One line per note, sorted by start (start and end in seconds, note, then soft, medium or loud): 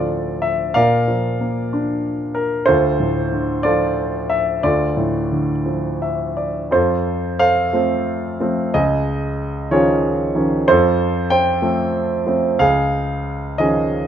0.00 0.71 D2 soft
0.00 0.40 A2 soft
0.00 0.72 D3 soft
0.00 0.73 F3 soft
0.00 0.72 F4 soft
0.00 0.78 A4 soft
0.00 0.77 C5 soft
0.00 0.45 D5 medium
0.00 0.74 F5 medium
0.42 0.76 E5 medium
0.74 2.64 A#2 soft
0.74 2.32 A#4 medium
0.74 2.32 D5 medium
0.74 2.40 F5 medium
1.08 2.33 F3 soft
1.41 2.65 A#3 soft
1.73 2.65 D4 soft
2.35 2.68 A#4 medium
2.66 4.59 D2 medium
2.66 3.59 F4 medium
2.66 3.59 A4 medium
2.66 3.66 C5 medium
3.00 4.26 A2 soft
3.32 4.60 D3 soft
3.63 4.61 F3 soft
3.63 4.60 F4 soft
3.63 4.59 A4 medium
3.63 4.31 D5 medium
4.30 4.61 E5 medium
4.63 6.68 D2 soft
4.63 6.33 F4 soft
4.63 6.33 A4 soft
4.63 6.33 D5 medium
4.97 6.33 A2 soft
5.32 6.68 D3 soft
5.66 6.68 F3 soft
6.02 6.34 E5 soft
6.37 6.69 D5 soft
6.71 8.70 F2 medium
6.71 7.70 F4 soft
6.71 7.38 A4 soft
6.71 7.38 C5 medium
7.39 8.70 A4 soft
7.39 8.70 C5 medium
7.39 8.78 F5 medium
7.73 8.39 F3 soft
7.73 8.39 A3 soft
7.73 8.39 C4 soft
8.40 8.73 F3 soft
8.40 8.73 A3 soft
8.40 8.73 C4 soft
8.74 10.64 C#2 medium
8.74 9.68 G#4 medium
8.74 9.75 D#5 medium
9.71 10.33 D#3 soft
9.71 10.34 F3 soft
9.71 10.34 C#4 soft
9.71 10.64 F4 medium
9.71 10.64 G#4 soft
9.71 10.40 C#5 medium
10.35 10.66 D#3 soft
10.35 10.67 F3 soft
10.35 10.67 C#4 soft
10.68 12.55 F2 medium
10.68 11.59 F4 medium
10.68 11.59 A4 medium
10.68 11.30 C5 medium
11.30 12.55 C5 medium
11.30 12.62 G5 medium
11.62 12.24 F3 soft
11.62 12.24 A3 soft
11.62 12.25 C4 soft
12.27 12.58 F3 soft
12.27 12.58 A3 soft
12.27 12.59 C4 soft
12.59 14.07 C#2 medium
12.59 13.57 G#4 medium
12.59 13.63 F5 medium
13.58 14.07 D#3 soft
13.58 14.07 F3 soft
13.58 14.07 C#4 soft
13.58 14.07 G#4 medium
13.58 14.07 D#5 medium